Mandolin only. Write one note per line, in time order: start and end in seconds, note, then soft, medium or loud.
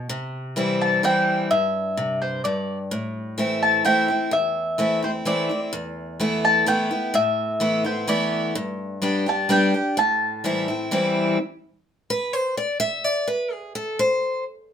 0.81 1.03 A5 loud
1.05 1.48 G5 loud
1.51 2.21 E5 loud
2.22 2.44 C5 medium
2.44 2.77 D5 medium
3.63 3.85 A5 loud
3.85 4.29 G5 loud
4.33 5.00 E5 loud
5.04 5.10 C5 medium
5.27 5.60 D5 medium
6.45 6.66 A5 loud
6.68 7.16 G5 medium
7.15 7.86 E5 loud
7.86 8.07 C5 medium
8.09 8.42 D5 medium
9.29 9.51 A5 loud
9.52 9.95 G5 loud
9.99 11.13 A5 loud